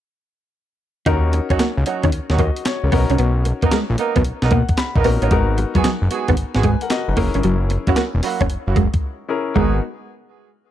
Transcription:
1.06 D#2 C#4 D#4 F#4 A#4, kick, closed hi-hat
1.33 muted clean electric guitar stroke, closed hi-hat
1.50 F#3 C#4 D#4 F#4, kick, closed hi-hat
1.59 A#3, snare, clap, closed hi-hat
1.77 C#2
1.85 F#3 C#4 D#4 F#4, muted clean electric guitar stroke, closed hi-hat
2.03 D#2 C#4, kick, closed hi-hat
2.12 D#2, closed hi-hat
2.29 D#2 F#3 C#4 D#4 F#4, snare
2.39 A#3 F#4 D#5, kick, closed hi-hat
2.56 closed hi-hat
2.65 C#5, muted clean electric guitar stroke, snare, clap, closed hi-hat
2.83 C#2 C#4 A#4
2.92 B1 B3 C#4 D#4 F#4 A#4, kick, open hi-hat
3.10 C2 C#4, closed hi-hat
3.18 B1 B3, closed hi-hat
3.45 muted clean electric guitar stroke, closed hi-hat
3.62 A#3 B3 D#4 A#4, kick, closed hi-hat
3.71 G#3, snare, clap, closed hi-hat
3.90 A#1
3.98 A#3 B3 D#4 A#4, muted clean electric guitar stroke, closed hi-hat
4.16 B1 B3, kick, closed hi-hat
4.25 B1, closed hi-hat
4.42 B1 A#3 B3 D#4 A#4, snare
4.51 A#3 F#5, kick, closed hi-hat
4.69 kick, closed hi-hat
4.77 B5, muted clean electric guitar stroke, snare, clap, closed hi-hat
4.95 A#1 A#3 B3 D#4 A#4, kick
5.04 A#1 B3 C#4 D#4 F#4 A#4, open hi-hat
5.22 A1 A#3 B3 C#4 D#4 A#4, closed hi-hat
5.31 G#1 G#3 B3 D#4 F#4 A#4, kick, closed hi-hat
5.58 muted clean electric guitar stroke, closed hi-hat
5.75 F#3 G#3 B3 F#4 G#4, kick, closed hi-hat
5.84 F#3, snare, clap, closed hi-hat
6.02 F#1
6.10 G#3 B3 F#4 G#4, muted clean electric guitar stroke, closed hi-hat
6.28 G#1 B3, kick, closed hi-hat
6.37 G#1, closed hi-hat
6.54 G#1 G#3 B3 F#4 G#4, snare
6.63 G#3 B4 G#5, kick, closed hi-hat
6.81 A#4 F#5, closed hi-hat
6.90 F#4 D#5, muted clean electric guitar stroke, snare, clap, closed hi-hat
7.08 F#1 D#4 B4
7.17 F#1 A#3 C#4 E4 G#4 A#4, kick, open hi-hat
7.34 G1 C#4, closed hi-hat
7.43 F#1 F#3, closed hi-hat
7.70 muted clean electric guitar stroke, closed hi-hat
7.87 F#3 A#3 C#4 E4 F#4, kick, closed hi-hat
7.96 A#3, snare, clap, closed hi-hat
8.15 E1
8.23 F#3 A#3 E4 F#4, muted clean electric guitar stroke, open hi-hat
8.41 F#1 C#4, kick, closed hi-hat
8.50 F#1, closed hi-hat
8.67 F#1 F#3 A#3 E4 F#4
8.76 G#3, kick, closed hi-hat
8.94 kick, closed hi-hat
9.29 C#4 E4 G#4 A#4
9.55 G#1 G#3 B3 D#4 F#4 G#4 A#4, kick

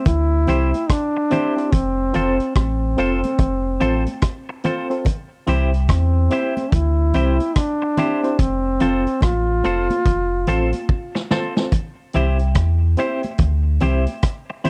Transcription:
0.05 D2 E4, kick, closed hi-hat, low conga
0.47 C2 C4 E4 G4 C5, closed hi-hat, low conga
0.74 closed hi-hat, high conga
0.89 D4, kick, cross-stick, closed hi-hat
1.17 muted clean electric guitar stroke
1.30 C4 E4 G4 C5, closed hi-hat, high conga, low conga
1.57 C4 E4 G4 C5, closed hi-hat
1.72 F1 C4, kick, closed hi-hat, low conga
2.14 F1 C4 F4 A4 C5, closed hi-hat, low conga
2.40 closed hi-hat
2.55 A1 C4, kick, cross-stick, closed hi-hat, high conga
2.97 F1 C4 F4 A4 C5, closed hi-hat, high conga
3.23 A4 C5, closed hi-hat, high conga
3.38 F1, kick, closed hi-hat, low conga
3.80 A1 C4 F4 A4 C5, closed hi-hat, low conga
4.06 closed hi-hat, high conga
4.22 kick, cross-stick, closed hi-hat
4.49 muted clean electric guitar stroke
4.64 C4 F4 A4 C5, closed hi-hat, high conga, low conga
4.90 C4 F4 A4 C5, closed hi-hat
5.05 kick, closed hi-hat, low conga
5.46 C2 C4 E4 G4 C5, closed hi-hat, low conga
5.74 closed hi-hat
5.88 E2 C4, kick, cross-stick, closed hi-hat, high conga
6.30 C4 E4 G4 C5, closed hi-hat, high conga
6.57 G4 C5, closed hi-hat, high conga
6.72 D2 E4, kick, closed hi-hat, low conga
7.14 C2 C4 E4 G4 C5, closed hi-hat, low conga
7.40 closed hi-hat, high conga
7.55 D4, kick, cross-stick, closed hi-hat
7.82 muted clean electric guitar stroke
7.97 C4 E4 G4 C5, closed hi-hat, high conga, low conga
8.24 C4 E4 G4 C5, closed hi-hat
8.39 F1 C4, kick, closed hi-hat, low conga
8.80 F1 C4 F4 A4 C5, closed hi-hat, low conga
9.07 closed hi-hat
9.21 A1 F4, kick, cross-stick, closed hi-hat, high conga
9.64 F1 C4 F4 A4 C5, closed hi-hat, high conga
9.90 A4 C5, closed hi-hat, high conga
10.05 F1, kick, closed hi-hat, low conga
10.47 A1 C4 F4 A4 C5, closed hi-hat, low conga
10.73 closed hi-hat, high conga
10.89 kick
11.15 muted clean electric guitar stroke, snare
11.31 C4 F4 A4 C5, snare, high conga, low conga
11.57 C4 F4 A4 C5, snare
11.72 kick, closed hi-hat, low conga
12.13 C2 C4 E4 G4 C5, closed hi-hat, low conga
12.39 closed hi-hat
12.55 E2, kick, cross-stick, closed hi-hat, high conga
12.97 C4 E4 G4 C5, closed hi-hat, high conga
13.23 closed hi-hat, high conga
13.38 D2, kick, closed hi-hat, low conga
13.80 C2 C4 E4 G4 C5, closed hi-hat, low conga
14.06 closed hi-hat, high conga
14.22 kick, cross-stick, closed hi-hat
14.50 muted clean electric guitar stroke
14.64 C4 E4 G4 C5, closed hi-hat, high conga, low conga

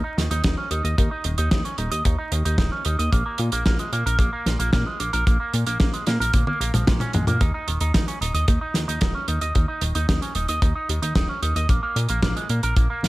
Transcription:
0.04 D#4
0.17 D#2 D#3, snare, closed hi-hat
0.31 D#2 D#4, closed hi-hat
0.44 D#1 D#4, kick, snare, closed hi-hat
0.58 C#4
0.71 D#2 D#4, closed hi-hat
0.84 D#2 D#5, closed hi-hat
0.98 D#2 D#4, kick, closed hi-hat
1.11 D#4
1.24 D#1 D#3, closed hi-hat
1.38 D#2 D#4, closed hi-hat
1.51 D#2 D#4, kick, snare, closed hi-hat
1.65 C#4, closed hi-hat
1.78 D#1 D#4, closed hi-hat
1.91 D#2 D#5, closed hi-hat
2.05 D#2 D#4, kick, closed hi-hat
2.18 D#4
2.32 D#2 D#3, closed hi-hat
2.45 D#2 D#4, closed hi-hat
2.58 D#1 D#4, kick, snare, closed hi-hat
2.72 C#4
2.85 D#2 D#4, closed hi-hat
2.99 D#2 D#5, closed hi-hat
3.12 A#1 A#3, kick, closed hi-hat
3.26 A#3
3.38 A#2, closed hi-hat
3.52 A#1 A#3, closed hi-hat
3.66 A#1 A#3, kick, snare, closed hi-hat
3.79 G#3, closed hi-hat
3.93 A#2 A#3, closed hi-hat
4.06 A#1 A#4, closed hi-hat
4.19 A#1 A#3, kick, closed hi-hat
4.33 A#3
4.46 A#1 A#2, snare, closed hi-hat
4.59 A#1 A#3, closed hi-hat
4.73 A#2 A#3, kick, snare, closed hi-hat
4.86 G#3
5.00 A#1 A#3, closed hi-hat
5.13 A#1 A#4, closed hi-hat
5.27 A#1 A#3, kick, closed hi-hat
5.40 A#3
5.53 A#2, closed hi-hat
5.67 A#1 A#3, closed hi-hat
5.80 A#1, kick, snare, closed hi-hat
5.93 G#3, closed hi-hat
6.07 A#2 A#3, snare, closed hi-hat
6.20 A#1 A#4, closed hi-hat
6.33 A#1 A#3, kick, closed hi-hat, high tom
6.47 A#3, high tom
6.60 A#1 A#3, closed hi-hat
6.74 A#1 F3, closed hi-hat, mid tom
6.87 A#1 A#2, kick, snare, closed hi-hat, mid tom
7.00 C#4, closed hi-hat, mid tom
7.13 A#1 G#3, closed hi-hat, mid tom
7.27 A#2 A#3, closed hi-hat, mid tom
7.41 D#2 D#4, kick, closed hi-hat
7.54 D#4
7.67 D#1 D#3, closed hi-hat
7.81 D#2 D#4, closed hi-hat
7.94 D#2 D#4, kick, snare, closed hi-hat
8.08 C#4, closed hi-hat
8.21 D#1 D#4, closed hi-hat
8.34 D#2 D#5, closed hi-hat
8.48 D#2 D#4, kick, closed hi-hat
8.61 D#4
8.74 D#2 D#3, snare, closed hi-hat
8.88 D#2 D#4, closed hi-hat
9.01 D#1 D#4, kick, snare, closed hi-hat
9.15 C#4
9.28 D#2 D#4, closed hi-hat
9.41 D#2 D#5, closed hi-hat
9.55 D#2 D#4, kick, closed hi-hat
9.68 D#4
9.81 D#1 D#3, closed hi-hat
9.95 D#2 D#4, closed hi-hat
10.09 D#2 D#4, kick, snare, closed hi-hat
10.22 C#4, closed hi-hat
10.35 D#1 D#4, closed hi-hat
10.48 D#2 D#5, closed hi-hat
10.62 D#2 D#4, kick, closed hi-hat
10.75 D#4
10.89 D#2 D#3, closed hi-hat
11.02 D#2 D#4, closed hi-hat
11.15 D#1 D#4, kick, snare, closed hi-hat
11.29 C#4
11.42 D#2 D#4, closed hi-hat
11.56 D#2 D#5, closed hi-hat
11.69 A#1 A#3, kick, closed hi-hat
11.83 A#3
11.96 A#2, closed hi-hat
12.09 A#1 A#3, closed hi-hat
12.22 A#1 A#3, kick, snare, closed hi-hat
12.36 G#3, closed hi-hat
12.49 A#2 A#3, closed hi-hat
12.63 A#1 A#4, closed hi-hat
12.76 A#1 A#3, kick, closed hi-hat
12.90 A#3
13.03 A#1 A#2, snare, closed hi-hat

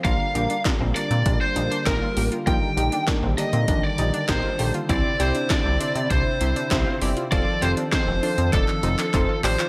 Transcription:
0.04 A#1 D3 G3 A#3 D4 F4 A#4 F5, kick, closed hi-hat
0.35 A#1 A#3 D4 F4 G4 A#4, closed hi-hat
0.50 D4, closed hi-hat
0.65 A#3 D4 F4 A#4, kick, snare, clap, closed hi-hat
0.80 A#1 C4
0.95 A#3 D4 F4 A#4 D5, closed hi-hat
1.11 A#2 C4, closed hi-hat
1.26 A#1 A#3 D4 F4 A#4, kick, closed hi-hat
1.41 C5
1.56 A#1 A#3 D4 D#4 F4 A#4, closed hi-hat
1.71 D4, closed hi-hat
1.86 A#1 A#3 D4 D#4 F4 A#4, kick, snare, clap, closed hi-hat
2.02 F4
2.17 A1 A#3 D4 F4 G4 A#4, open hi-hat
2.32 F4, closed hi-hat
2.47 A#1 D#3 A#3 D#4 F4 G4 A#4 G5, kick, closed hi-hat
2.77 A#1 A#3 D#4 G4 A#4, closed hi-hat
2.92 D4, closed hi-hat
3.07 A#3 D4 D#4 G4 A#4, kick, snare, clap, closed hi-hat
3.23 A#1 C4
3.38 A#3 D4 D#4 G4 A#4 D#5, closed hi-hat
3.53 A#2 C4, closed hi-hat
3.68 A#1 A#3 D4 D#4 G4 A#4, kick, closed hi-hat
3.84 D5
3.98 A#1 A#3 D#4 G4 A#4, closed hi-hat
4.14 D4, closed hi-hat
4.29 A#1 A#3 D#4 G4 A#4 C5, kick, snare, clap, closed hi-hat
4.44 F4
4.59 A#1 A#3 D#4 G4 A4, open hi-hat
4.74 F4, closed hi-hat
4.89 C2 C3 C4 E4 G4 C5 D5, kick, closed hi-hat
5.19 C2 C4 E4 G4 C5 D5, closed hi-hat
5.35 D4, closed hi-hat
5.50 C4 D4 E4 G4 C5 D5, kick, snare, clap, closed hi-hat
5.65 C2 C4
5.80 C4 D4 E4 G4 C5, closed hi-hat
5.95 C3 C4, closed hi-hat
6.10 C2 C4 D4 E4 G4 C5, kick, closed hi-hat
6.41 C2 C4 E4 G4 C5, closed hi-hat
6.56 D4, closed hi-hat
6.71 C2 C4 E4 G4 C5, kick, snare, clap, closed hi-hat
6.86 F4
7.01 G1 C4 E4 G4 D5, open hi-hat
7.17 F4, closed hi-hat
7.32 F1 D#3 F3 C4 F4 A4 C5 D5, kick, closed hi-hat
7.62 F1 C4 F4 G4 A4 C5, closed hi-hat
7.77 D4, closed hi-hat
7.92 C4 D#4 F4 A4 C5, kick, snare, clap, closed hi-hat
8.08 F1 C4
8.23 C4 D4 F4 A4 C5, open hi-hat
8.38 F2 C4, closed hi-hat
8.53 F1 C4 D4 F4 A4 D#5, kick, clap, closed hi-hat
8.68 clap
8.83 F1 C4 D#4 F4 A4 C5, closed hi-hat
8.99 D4, clap, closed hi-hat
9.14 F1 C4 D#4 F4 A4 C5, kick, clap, closed hi-hat
9.29 F4
9.44 A1 C4 F4 G4 A4 C5 D5, clap, open hi-hat
9.59 F4, clap, closed hi-hat

